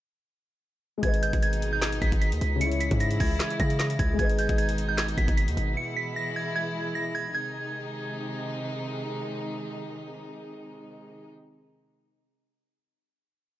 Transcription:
0.98 2.55 G#3 medium
0.98 2.57 G#4 medium
1.03 1.32 G#1 loud
1.03 2.59 B2 medium
1.03 2.59 D#3 medium
1.03 2.59 G#3 medium
1.03 2.59 D#4 medium
1.03 2.59 B4 medium
1.03 1.22 G#6 loud
1.03 kick loud
1.03 closed hi-hat medium
1.08 2.61 D#5 medium
1.14 closed hi-hat medium
1.23 1.41 G6 medium
1.23 closed hi-hat medium
1.33 1.99 G#1 loud
1.33 kick loud
1.33 closed hi-hat medium
1.42 1.71 G#6 medium
1.42 closed hi-hat medium
1.53 closed hi-hat medium
1.62 closed hi-hat medium
1.73 1.81 G6 medium
1.82 2.01 G#6 medium
1.82 snare loud
1.82 clap loud
1.82 closed hi-hat medium
1.93 closed hi-hat medium
2.02 2.12 G#1 loud
2.02 2.20 B6 medium
2.02 kick medium
2.02 closed hi-hat medium
2.12 2.33 G#1 loud
2.12 kick loud
2.12 closed hi-hat medium
2.21 2.59 B6 medium
2.21 closed hi-hat medium
2.32 2.41 D#2 loud
2.32 closed hi-hat medium
2.41 2.89 C#2 loud
2.41 closed hi-hat medium
2.56 4.13 C#3 medium
2.56 4.12 G#3 medium
2.61 4.17 C#3 medium
2.61 4.17 E3 medium
2.61 5.74 G#3 medium
2.61 4.17 E4 medium
2.61 2.80 C#7 medium
2.61 closed hi-hat medium
2.66 4.19 C#5 medium
2.72 closed hi-hat medium
2.81 2.99 B6 medium
2.81 closed hi-hat medium
2.91 3.19 G#2 loud
2.91 kick loud
2.91 closed hi-hat medium
3.00 3.19 A#6 medium
3.00 closed hi-hat medium
3.11 closed hi-hat medium
3.20 3.39 C#2 loud
3.20 3.57 G#6 medium
3.20 kick medium
3.20 open hi-hat medium
3.40 snare loud
3.40 clap loud
3.40 closed hi-hat medium
3.50 closed hi-hat medium
3.60 3.98 C#3 loud
3.60 3.78 A#6 medium
3.60 kick medium
3.60 closed hi-hat medium
3.70 closed hi-hat medium
3.79 3.98 A#6 medium
3.79 snare loud
3.79 clap medium
3.79 closed hi-hat medium
3.90 closed hi-hat medium
3.99 4.18 C#2 loud
3.99 4.18 G#6 medium
3.99 kick medium
3.99 closed hi-hat medium
4.14 5.71 G#3 medium
4.14 5.73 G#4 medium
4.19 4.48 G#1 loud
4.19 7.32 B2 medium
4.19 5.75 D#3 medium
4.19 5.75 D#4 medium
4.19 5.75 B4 medium
4.19 4.38 G#6 loud
4.19 kick loud
4.19 closed hi-hat medium
4.24 5.76 D#5 medium
4.29 closed hi-hat medium
4.39 4.57 G6 medium
4.39 closed hi-hat medium
4.49 5.15 G#1 loud
4.49 kick loud
4.49 closed hi-hat medium
4.58 4.87 G#6 medium
4.58 closed hi-hat medium
4.69 closed hi-hat medium
4.78 closed hi-hat medium
4.89 4.97 G6 medium
4.98 5.16 G#6 medium
4.98 snare loud
4.98 clap loud
4.98 closed hi-hat medium
5.09 closed hi-hat medium
5.18 5.28 G#1 loud
5.18 5.36 B6 medium
5.18 kick medium
5.18 closed hi-hat medium
5.28 5.49 G#1 loud
5.28 kick loud
5.28 closed hi-hat medium
5.37 5.74 B6 medium
5.37 closed hi-hat medium
5.48 5.56 D#2 loud
5.48 closed hi-hat medium
5.57 5.76 G#1 loud
5.57 closed hi-hat medium
5.77 7.33 E3 medium
5.77 7.33 G#3 medium
5.77 7.33 E4 medium
5.77 5.96 C#7 medium
5.96 6.15 B6 medium
6.16 6.35 A#6 medium
6.36 6.54 G#6 medium
6.56 6.93 G#6 medium
6.95 7.14 A#6 medium
7.15 7.33 G#6 medium
7.35 11.27 C3 medium
7.35 11.27 D#3 medium
7.35 11.27 G#3 medium
7.35 11.27 D#4 medium
7.35 8.49 G#6 medium

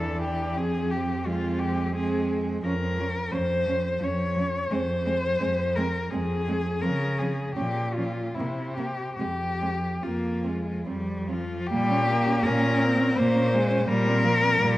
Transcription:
0.00 0.59 E2 soft
0.00 0.57 E3 soft
0.00 0.58 D4 soft
0.00 0.21 A4 medium
0.22 0.59 G4 medium
0.56 2.64 F2 medium
0.56 1.27 F3 soft
0.56 1.25 C4 medium
0.56 0.92 G#4 medium
0.91 1.28 G4 medium
1.25 1.93 G#3 soft
1.25 1.94 C4 medium
1.25 1.61 F4 medium
1.59 1.94 G4 medium
1.94 2.61 G#3 medium
1.94 2.62 C4 medium
1.94 2.29 G#4 medium
2.62 3.25 F2 medium
2.62 2.70 F3 medium
2.62 2.73 C#4 medium
2.62 3.34 A#4 medium
2.97 3.05 F3 soft
2.97 3.08 C#4 soft
3.30 3.94 F2 medium
3.30 3.38 F3 soft
3.30 3.40 C#4 medium
3.30 4.05 C5 medium
3.66 3.74 F3 soft
3.66 3.77 C#4 medium
4.00 4.63 F2 medium
4.00 4.08 F3 medium
4.00 4.11 C#4 soft
4.00 4.75 C#5 medium
4.35 4.43 F3 soft
4.39 4.47 C#4 soft
4.71 5.33 F2 medium
4.71 4.79 G#3 medium
4.71 4.80 C4 medium
4.71 5.78 C5 medium
5.06 5.14 G#3 soft
5.06 5.14 C4 soft
5.40 6.04 F2 medium
5.40 5.49 G#3 soft
5.40 5.48 C4 soft
5.76 5.85 G#3 soft
5.76 5.86 C4 medium
5.76 6.12 A#4 medium
6.11 6.75 F2 medium
6.11 6.21 G#3 soft
6.11 6.20 C4 medium
6.11 6.83 G#4 medium
6.48 6.56 G#3 soft
6.48 6.56 C4 soft
6.81 7.48 C#3 medium
6.81 6.92 F3 medium
6.81 6.89 C4 medium
6.81 7.20 A#4 medium
7.18 7.28 F3 soft
7.18 7.26 C4 soft
7.18 7.54 G#4 medium
7.55 8.27 A#2 medium
7.55 7.64 C#4 soft
7.55 7.96 G4 medium
7.59 7.67 F3 soft
7.94 8.06 F3 soft
7.94 8.05 C#4 soft
7.94 8.36 F4 medium
8.35 9.10 C3 medium
8.35 8.43 C4 soft
8.35 8.76 E4 medium
8.40 8.48 A#3 soft
8.75 8.86 A#3 soft
8.75 8.84 C4 soft
8.75 9.15 G4 medium
9.16 9.28 G#3 soft
9.16 9.27 C4 soft
9.16 10.05 G4 medium
9.21 9.95 F2 soft
9.61 9.69 G#3 soft
9.61 9.70 C4 soft
10.01 10.78 F2 soft
10.01 10.48 A#3 soft
10.01 10.09 C4 soft
10.01 10.87 F4 medium
10.44 10.86 G#3 soft
10.44 10.52 C4 soft
10.86 11.62 F2 medium
10.86 11.32 G3 medium
10.86 10.94 C4 soft
11.28 11.70 F3 soft
11.28 11.36 C4 soft
11.28 11.68 F4 medium
11.67 11.92 A#3 medium
11.67 12.45 G4 loud
11.71 12.37 A#2 medium
11.71 12.06 G3 medium
11.90 12.09 C#4 medium
12.07 12.28 A#3 medium
12.07 12.48 A#3 medium
12.27 12.45 C#4 medium
12.44 13.09 A#2 medium
12.44 12.66 A#3 medium
12.44 12.85 C#4 medium
12.44 13.19 A#4 loud
12.64 12.83 C#4 medium
12.81 13.00 A#3 medium
12.81 13.20 C4 medium
12.99 13.16 C#4 medium
13.17 13.81 A#2 medium
13.17 13.38 A#3 medium
13.17 13.56 A#3 medium
13.17 13.89 C5 loud
13.36 13.53 C#4 medium
13.52 13.88 G#3 medium
13.52 13.71 A#3 medium
13.70 13.87 C#4 medium
13.87 14.52 A#2 medium
13.87 14.25 G3 medium
13.87 14.08 A#3 medium
13.87 14.78 A#4 loud
14.07 14.26 C4 medium
14.24 14.62 F3 medium
14.24 14.44 A#3 medium
14.43 14.58 C4 medium
14.59 14.78 A#2 medium
14.59 14.78 G3 medium
14.59 14.77 A#3 medium

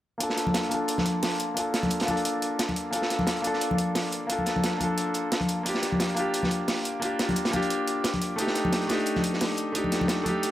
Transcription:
0.18 0.68 A#3 medium
0.18 0.69 D4 medium
0.18 0.70 F4 medium
0.18 kick loud
0.18 closed hi-hat medium
0.23 0.71 A4 medium
0.30 snare soft
0.37 kick medium
0.37 snare soft
0.37 closed hi-hat medium
0.47 high conga medium
0.54 snare medium
0.54 closed hi-hat medium
0.63 closed hi-hat soft
0.69 1.53 A#3 medium
0.69 1.54 D4 medium
0.69 1.56 F4 medium
0.69 closed hi-hat medium
0.74 1.56 A4 medium
0.88 closed hi-hat medium
0.98 snare soft
0.98 high conga medium
1.06 kick loud
1.06 closed hi-hat medium
1.23 snare loud
1.23 closed hi-hat medium
1.23 open hi-hat medium
1.40 closed hi-hat medium
1.54 2.04 A#3 medium
1.54 2.06 D4 medium
1.54 2.07 F4 medium
1.54 kick loud
1.54 closed hi-hat medium
1.60 2.08 A4 medium
1.74 snare medium
1.74 closed hi-hat medium
1.83 closed hi-hat soft
1.83 high conga medium
1.90 closed hi-hat medium
2.00 snare medium
2.00 closed hi-hat medium
2.05 2.89 A#3 medium
2.05 2.91 D4 medium
2.05 2.92 F4 medium
2.05 closed hi-hat medium
2.05 closed hi-hat soft
2.05 high conga medium
2.11 2.93 A4 medium
2.17 closed hi-hat medium
2.25 closed hi-hat medium
2.42 closed hi-hat medium
2.59 snare loud
2.59 closed hi-hat medium
2.68 kick medium
2.68 closed hi-hat soft
2.68 high conga medium
2.76 closed hi-hat medium
2.91 3.40 A#3 medium
2.91 3.42 D4 medium
2.91 3.43 F4 medium
2.91 kick loud
2.91 closed hi-hat medium
2.96 3.44 A4 medium
3.02 snare soft
3.10 kick medium
3.10 snare soft
3.10 closed hi-hat medium
3.19 high conga medium
3.27 snare loud
3.27 closed hi-hat medium
3.37 closed hi-hat soft
3.42 4.25 A#3 medium
3.42 4.27 D4 medium
3.42 4.28 F4 medium
3.42 closed hi-hat medium
3.47 4.29 A4 medium
3.53 snare soft
3.61 closed hi-hat medium
3.71 high conga medium
3.78 kick loud
3.78 closed hi-hat medium
3.95 snare loud
3.95 closed hi-hat medium
3.95 open hi-hat medium
4.12 closed hi-hat medium
4.27 4.77 A#3 medium
4.27 4.78 D4 medium
4.27 4.79 F4 medium
4.27 kick loud
4.27 closed hi-hat medium
4.32 4.80 A4 medium
4.39 high conga medium
4.46 snare soft
4.46 closed hi-hat medium
4.56 high conga medium
4.64 snare loud
4.64 closed hi-hat medium
4.78 5.62 A#3 medium
4.78 5.64 D4 medium
4.78 5.65 F4 medium
4.78 kick medium
4.78 closed hi-hat medium
4.78 high conga medium
4.84 5.65 A4 medium
4.98 closed hi-hat medium
5.14 closed hi-hat medium
5.32 snare loud
5.32 closed hi-hat medium
5.41 kick loud
5.41 closed hi-hat soft
5.41 high conga medium
5.49 closed hi-hat medium
5.63 6.13 A#3 medium
5.63 6.15 D4 medium
5.63 6.16 F4 medium
5.63 kick loud
5.63 closed hi-hat medium
5.69 6.17 G4 medium
5.74 snare soft
5.83 kick medium
5.83 snare soft
5.83 closed hi-hat medium
5.92 high conga medium
6.00 snare loud
6.00 closed hi-hat medium
6.09 closed hi-hat soft
6.14 6.98 A#3 medium
6.14 7.00 D4 medium
6.14 7.01 F4 medium
6.14 closed hi-hat medium
6.20 7.02 G4 medium
6.34 closed hi-hat medium
6.43 snare soft
6.43 high conga medium
6.51 kick medium
6.51 closed hi-hat medium
6.68 snare loud
6.68 closed hi-hat medium
6.68 open hi-hat medium
6.85 closed hi-hat medium
7.00 7.49 A#3 medium
7.00 7.51 D4 medium
7.00 7.52 F4 medium
7.00 kick loud
7.00 closed hi-hat medium
7.05 7.53 G4 medium
7.19 snare loud
7.19 closed hi-hat medium
7.29 closed hi-hat soft
7.29 high conga medium
7.36 closed hi-hat medium
7.45 snare loud
7.45 closed hi-hat medium
7.51 8.35 A#3 medium
7.51 8.36 D4 medium
7.51 8.37 F4 medium
7.51 closed hi-hat soft
7.51 closed hi-hat medium
7.51 high conga medium
7.56 8.38 G4 medium
7.63 closed hi-hat medium
7.70 closed hi-hat medium
7.88 closed hi-hat medium
8.04 snare loud
8.04 closed hi-hat medium
8.14 kick medium
8.14 closed hi-hat soft
8.14 high conga medium
8.22 closed hi-hat medium
8.36 8.86 A3 medium
8.36 8.87 D4 medium
8.36 8.88 D#4 medium
8.36 kick loud
8.36 closed hi-hat medium
8.41 8.89 G4 medium
8.47 snare medium
8.55 kick medium
8.55 snare soft
8.55 closed hi-hat medium
8.65 high conga medium
8.73 snare loud
8.73 closed hi-hat medium
8.81 closed hi-hat soft
8.87 9.71 A3 medium
8.87 9.73 D4 medium
8.87 9.74 D#4 medium
8.87 snare loud
8.87 closed hi-hat medium
8.93 9.75 G4 medium
8.99 closed hi-hat soft
9.06 closed hi-hat medium
9.15 snare soft
9.15 high conga medium
9.24 kick medium
9.24 closed hi-hat medium
9.33 snare soft
9.41 snare loud
9.41 closed hi-hat medium
9.41 open hi-hat medium
9.57 closed hi-hat medium
9.72 10.22 A3 medium
9.72 10.24 D4 medium
9.72 10.25 D#4 medium
9.72 kick loud
9.72 closed hi-hat medium
9.78 10.26 G4 medium
9.84 high conga medium
9.92 snare soft
9.92 closed hi-hat medium
10.01 high conga medium
10.08 snare loud
10.08 closed hi-hat medium
10.24 10.51 A3 medium
10.24 10.51 D4 medium
10.24 10.51 D#4 medium
10.24 kick medium
10.24 closed hi-hat medium
10.24 high conga medium
10.29 10.51 G4 medium
10.43 closed hi-hat medium
10.43 swell medium

